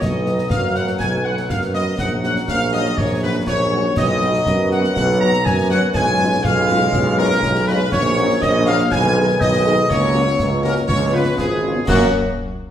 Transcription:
0.00 tuba B1, trombone section F#3 B3, woodwind section D#5, trumpet section D#5, concert bass drum, snare, crash
0.26 french horn section F#3 F#4 B4, snare
0.38 snare
0.49 tuba F#2, woodwind section F5, trumpet section F5, concert bass drum, snare
0.75 french horn section F#3 F#4 B4, trumpet section F#5, woodwind section F#5, snare
0.87 snare
0.98 tuba B1, trumpet section G#5, woodwind section G#5, concert bass drum, snare
1.24 french horn section F#3 F#4 B4, trumpet section F#5, woodwind section F#5
1.37 snare
1.48 tuba F#2, trumpet section F5, woodwind section F5, concert bass drum, snare
1.62 snare
1.74 french horn section F#3 F#4 B4, trumpet section D#5, woodwind section D#5, snare
1.98 tuba A#1, trombone section F#3 C#4, trumpet section F#5, woodwind section F#5, concert bass drum, snare, crash
2.23 french horn section F#3 C#4 F#4, trumpet section F#5, woodwind section F#5, snare
2.36 snare
2.48 tuba A#1, trumpet section F5, woodwind section F5, concert bass drum, snare
2.73 french horn section F#3 C#4 F#4, trumpet section D#5, woodwind section D#5, snare
2.85 snare
2.97 tuba A#1, trumpet section C#5, woodwind section C#5, concert bass drum, snare
3.22 french horn section F#3 C#4 F#4, trumpet section B4, woodwind section B4
3.47 tuba A#1, trumpet section C#5, woodwind section C#5, concert bass drum, snare
3.71 french horn section F#3 C#4 F#4
3.96 tuba B1, trombone section F#3 B3, woodwind section D#5, trumpet section D#5, concert bass drum, snare, crash
4.21 french horn section F#3 B3 F#4, snare
4.34 snare
4.46 tuba F#2, concert bass drum, snare
4.70 french horn section F#3 B3 F#4, woodwind section F#5, trumpet section F#5, snare
4.84 snare
4.95 tuba B1, trumpet section F#5, woodwind section F#5, concert bass drum, snare
5.20 french horn section F#3 B3 F#4, trumpet section A#5, woodwind section A#5
5.33 snare
5.45 tuba F#2, woodwind section G#5, trumpet section G#5, concert bass drum, snare
5.58 snare
5.70 french horn section F#3 B3 F#4, woodwind section F#5, trumpet section F#5, snare
5.94 tuba B1, trombone section G#3 C#4, trumpet section G#5, woodwind section G#5, concert bass drum, snare, crash
6.19 french horn section G#3 C#4 F4, snare
6.32 snare
6.43 tuba B1, trumpet section F5, woodwind section F5, concert bass drum, snare
6.69 french horn section G#3 C#4 F4, snare
6.80 snare
6.93 tuba B1, concert bass drum, snare
7.18 french horn section G#3 C#4 F4, trumpet section A#4, woodwind section A#4
7.30 snare
7.43 tuba B1, concert bass drum, snare
7.55 snare
7.67 french horn section G#3 C#4 F4, woodwind section B4, trumpet section B4, snare
7.91 tuba A#1, trombone section F#3 C#4, woodwind section C#5, trumpet section C#5, concert bass drum, snare, crash
8.17 french horn section A#3 C#4 F#4, snare
8.29 snare
8.41 tuba A#1, woodwind section D#5, trumpet section D#5, concert bass drum, snare
8.66 french horn section A#3 C#4 F#4, trumpet section F5, woodwind section F5, snare
8.79 snare
8.91 tuba B1, trombone section D#3 B3, woodwind section G#5, trumpet section G#5, concert bass drum, snare
9.16 french horn section G#3 D#4 G#4
9.28 snare
9.40 tuba B1, woodwind section D#5, trumpet section D#5, concert bass drum, snare
9.53 snare
9.64 french horn section G#3 D#4 G#4, snare
9.89 tuba C#2, trombone section F#3 A#3, woodwind section C#5, trumpet section C#5, concert bass drum, snare, crash
10.14 french horn section A#3 C#4 F#4, snare
10.27 snare
10.39 tuba C#2, concert bass drum, snare
10.63 french horn section A#3 C#4 F#4, trumpet section A#4, woodwind section A#4, snare
10.76 snare
10.87 tuba C#2, trombone section F3 B3, trumpet section C#5, woodwind section C#5, concert bass drum, snare
11.13 french horn section B3 C#4 F4, trumpet section B4, woodwind section B4
11.37 tuba G#1, trumpet section G#4, woodwind section G#4, concert bass drum, snare
11.64 french horn section B3 C#4 F4
11.87 tuba F#2, trombone section F#3 A#3, french horn section A#3 C#4 F#4, trumpet section F#4, woodwind section F#5, concert bass drum, snare, crash

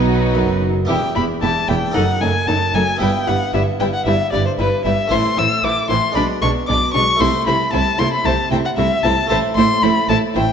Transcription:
Already playing: double bass section B1, harpsichord B2 B3 D#4 F#4, cello section B2, viola section F#3, violin section D#4 F#4, violin B4
0.35 double bass section F#1, harpsichord F#2, cello section F#2
0.85 double bass section E1, harpsichord B3 E4 G4, violin section E4
0.89 harpsichord E2, cello section E2, viola section B3, violin section G4, violin G5
1.16 double bass section E1, harpsichord E2, cello section E2, viola section B3, violin section E4 G4, violin B5
1.42 double bass section E1, harpsichord E2, cello section E2, viola section B3, violin section E4 G4, violin A5
1.68 double bass section E1, harpsichord E2, cello section E2, viola section B3, violin section E4 G4, violin G5
1.91 harpsichord D#4 A4, violin section D#4 A4, violin F#5
1.95 double bass section F#1, harpsichord F#2, cello section F#2, viola section A3
2.21 double bass section F#1, cello section F#2, harpsichord F#2, viola section A3, violin section D#4 A4, violin G#5
2.47 double bass section F#1, cello section F#2, harpsichord F#2, viola section A3, violin section D#4 A4, violin A5
2.74 double bass section F#1, cello section F#2, harpsichord F#2, viola section A3, violin section D#4 A4, violin G#5
2.97 harpsichord B3 E4 B4
3.01 double bass section G1, harpsichord G2, cello section G2, viola section G3, violin section E4 B4, violin G5
3.27 double bass section G1, harpsichord G2, cello section G2, viola section G3, violin section E4 B4, violin F#5
3.53 double bass section G1, harpsichord G2, cello section G2, viola section G3, violin section E4 B4, violin E5
3.80 double bass section G1, cello section G2, harpsichord G2, viola section G3, violin section E4 B4, violin G5
3.94 violin F#5
4.06 double bass section G1, cello section G2, harpsichord G2, viola section G3, violin section E4 B4, violin E5
4.32 double bass section G1, cello section G2, harpsichord G2, viola section G3, violin section E4 B4, violin D5
4.46 violin C5
4.58 double bass section G1, cello section G2, harpsichord G2, viola section G3, violin section E4 B4, violin B4
4.84 double bass section G1, cello section G2, harpsichord G2, viola section G3, violin section E4 B4, violin E5
5.08 double bass section A1, cello section A2, viola section E3, harpsichord A3 E4 C5, violin section E4 C5, violin C6
5.12 harpsichord A2
5.37 double bass section A1, cello section A2, harpsichord A2, viola section E3, violin section E4 C5, violin E6
5.63 double bass section A1, cello section A2, harpsichord A2, viola section E3, violin section E4 C5, violin D6
5.89 double bass section A1, cello section A2, harpsichord A2, viola section E3, violin section E4 C5, violin C6
6.12 double bass section B1, harpsichord G#3 D4 D5, violin B5
6.16 cello section B2, harpsichord B2, viola section G#3, violin section D4 D5
6.42 double bass section B1, harpsichord B2, cello section B2, viola section G#3, violin section D4 D5, violin C#6
6.68 double bass section B1, harpsichord B2, cello section B2, viola section G#3, violin section D4 D5, violin D6
6.94 double bass section B1, harpsichord B2, cello section B2, viola section G#3, violin section D4 D5, violin C#6
7.16 harpsichord A3 E4 C5, viola section A3, violin section E4, violin C6
7.21 double bass section C2, cello section C3, harpsichord C3, violin section C5
7.46 double bass section C2, harpsichord C3, cello section C3, viola section A3, violin section E4 C5, violin B5
7.73 double bass section C2, cello section C3, harpsichord C3, viola section A3, violin section E4 C5, violin A5
7.99 double bass section C2, cello section C3, harpsichord C3, viola section A3, violin section E4 C5, violin C6
8.13 violin B5
8.25 double bass section C2, cello section C3, harpsichord C3, viola section A3, violin section E4 C5, violin A5
8.51 double bass section C2, cello section C3, harpsichord C3, viola section A3, violin section E4 C5, violin G5
8.65 violin F#5
8.77 double bass section C2, cello section C3, harpsichord C3, viola section A3, violin section E4 C5, violin E5
9.03 double bass section C2, cello section C3, harpsichord C3, viola section A3, violin section E4 C5, violin A5
9.27 cello section A2, harpsichord A3 E4 C5, viola section A3, violin section E4 C5, violin A5
9.31 double bass section A1, harpsichord A2
9.56 double bass section A1, cello section A2, harpsichord A2, viola section A3, violin section E4 C5, violin C6
9.83 double bass section A1, cello section A2, harpsichord A2, viola section A3, violin section E4 C5, violin B5
10.09 double bass section A1, cello section A2, harpsichord A2, viola section A3, violin section E4 C5, violin A5
10.36 double bass section A1, cello section A2, harpsichord A2, viola section A3, violin section E4 C5, violin G5

